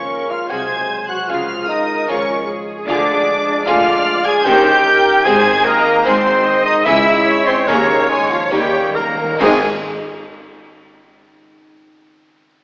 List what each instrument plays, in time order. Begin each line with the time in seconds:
Already playing: harp C#3 F4, trombone section F3 A#3, french horn section C#4, cor anglais C#4, viola section C#5, clarinet C#5, violin section C#6
0.09 harp A#3, viola section A#4
0.29 harp G#3, french horn section F4, cor anglais F4, clarinet F5, flute F5, violin section F6
0.49 double bass section C2, cello section C3, harp C3, trombone section F#3 G#3, violin section F#4 G#4 G#6, french horn section G#4, cor anglais G#4, viola section C5, clarinet G#5, flute G#5
0.70 harp F#4
0.90 harp G#3
1.09 harp F#3, french horn section F#4, cor anglais F#4, clarinet F#5, flute F#5, violin section F#6
1.27 double bass section C#2, cello section C#3, harp C#3, trombone section F3 G#3, french horn section F4, violin section F4 G#4 F6, cor anglais F4, viola section G#4, clarinet F5, flute F5
1.50 harp F4
1.68 harp G#3, french horn section D#4, cor anglais D#4, viola section A#4, flute D#5, clarinet D#5, violin section D#6
1.90 harp C#4
2.08 double bass section G#1, cello section G#2, trombone section F3 G#3, harp G#3, french horn section C#4, cor anglais C#4, violin section F4 G#4 C#6, flute C#5, clarinet C#5
2.30 harp F4
2.48 harp G#3, viola section G#4
2.69 harp C#4
2.87 double bass section D2, cello section D3, harp D3, trombone section F3 G#3, french horn section D4, cor anglais D4, violin section F4 G#4 D6, clarinet D5, flute D5
3.08 harp F4
3.28 harp G#3
3.47 harp D4
3.66 double bass section D2, cello section D3, harp D3, french horn section F4, violin section F4 G#4 F6, cor anglais F4, viola section D5, clarinet F5, flute F5
4.06 harp G#3
4.25 harp D4, french horn section G#4, cor anglais G#4, clarinet G#5, flute G#5, violin section G#6
4.45 double bass section D#2, timpani D#3, cello section D#3, harp D#3, trombone section D#3 C#4, violin section C#4 A#4 G6, french horn section G4, cor anglais G4, viola section C5, clarinet G5, flute G5
4.66 harp D#4
4.85 harp C#4, viola section A#4
5.06 harp A#3
5.24 double bass section G#1, cello section G#2, harp G#2, timpani G#2, trombone section C4, violin section C4 G#4 G#6, french horn section G#4, cor anglais G#4, viola section C5, clarinet G#5, flute G#5
5.46 harp D#4
5.64 cor anglais A#3, french horn section A#3, harp C4, clarinet A#4, flute A#4, viola section D#5, violin section A#5
5.85 harp D#3
6.05 double bass section G#1, harp G#2, cello section G#2, trombone section G#3, cor anglais C4, french horn section C4, violin section D#4 G#4 C6, viola section C5, clarinet C5, flute C5
6.26 harp F#4
6.45 harp D#4, viola section D#5
6.65 harp D#3, french horn section D#4, cor anglais D#4, clarinet D#5, flute D#5, violin section D#6
6.85 cello section C#2, double bass section C#2, trombone section C#3, harp C#3, violin section C#4 G#4 E6, cor anglais E4, french horn section E4, clarinet E5, flute E5, viola section E5
7.26 harp C#4, viola section C#5
7.46 french horn section C4, cor anglais C4, clarinet C5, flute C5, violin section C6
7.67 double bass section D#2, cello section D#2, timpani D#3, harp D#3, french horn section A#3, cor anglais A#3, violin section C#4 G#4 A#5, clarinet A#4, flute A#4
7.89 harp D#4
8.08 french horn section G#3, cor anglais G#3, harp C#4, clarinet G#4, flute G#4, violin section G#5
8.29 french horn section F3, cor anglais F3, harp A#3, clarinet F4, flute F4, violin section F5
8.51 cello section D#2, double bass section D#2, timpani D#3, harp D#3, french horn section G3, cor anglais G3, trombone section A#3, violin section C#4 D#4 G5, clarinet G4, flute G4
8.59 timpani D#3
8.67 timpani D#3
8.74 timpani D#3, harp D#4
8.83 timpani D#3
8.91 timpani D#3, french horn section A#3, clarinet A#4
8.95 timpani D#3, cor anglais A#3, harp C#4, flute A#4, viola section A#4, violin section A#5
9.07 timpani D#3
9.15 timpani D#3, harp A#3
9.23 timpani D#3
9.32 harp G#2, timpani D#3
9.37 double bass section G#1, cello section G#2, timpani G#2, trombone section D#3 C4, viola section D#3 G#3, harp G#3 C4, violin section C4 D#4 G#5, cor anglais G#4, clarinet G#4, flute G#5, concert bass drum, crash
9.41 french horn section G#3, harp D#4 G#4
9.46 harp D#5